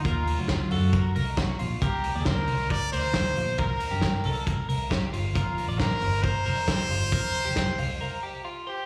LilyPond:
<<
  \new Staff \with { instrumentName = "Clean electric guitar" } { \time 4/4 \key c \dorian \tempo 4 = 136 bes'8. ges8. a'8 bes'8 bes'8 ges'8 f'8 | bes'8. d''16 c''4 bes'8 bes'8 g'8 f'8 | bes'8. g'8. a'8 bes'8 bes'8 g'8 f'8 | bes'8. d''16 c''4 bes'8 bes'8 g'8 f'8 |
bes'8. g'8. f'8 bes'8 g'8 f'8 c''8 | }
  \new Staff \with { instrumentName = "Trumpet" } { \time 4/4 \key c \dorian f'4. ges'4 r4. | g'4 bes'4 d''8 c''4. | bes'2 r2 | f'4 bes'4 c''2~ |
c''2. r8 g'8 | }
  \new Staff \with { instrumentName = "Fingered electric bass" } { \clef bass \time 4/4 \key c \dorian ees,8. d,8. ges,4 c,4 bes,,8 | c,8. ees,16 d,8 c,4 d,4 bes,,8 | c,8. g,8. c,4 c,4 g,,8 | f,,8. a,,8. g,,4 f,,4 g,,8 |
f,,8. f,,8. c,8 r2 | }
  \new DrumStaff \with { instrumentName = "Drums" } \drummode { \time 4/4 <hh bd>8 hho8 <hh bd sn>8 hho8 <hh bd>8 hho8 <hh bd sn>8 hho8 | <hh bd>8 hho8 <hh bd sn>8 hho8 <hh bd>8 hho8 <hh bd sn>8 hho8 | <hh bd>8 hho8 <hh bd sn>8 hho8 <hh bd>8 hho8 <hh bd sn>8 hho8 | <hh bd>8 hho8 <hh bd sn>8 hho8 <hh bd>8 hho8 <hh bd sn>8 hho8 |
<hh bd>8 hho8 <hh bd sn>8 hho8 r4 r4 | }
>>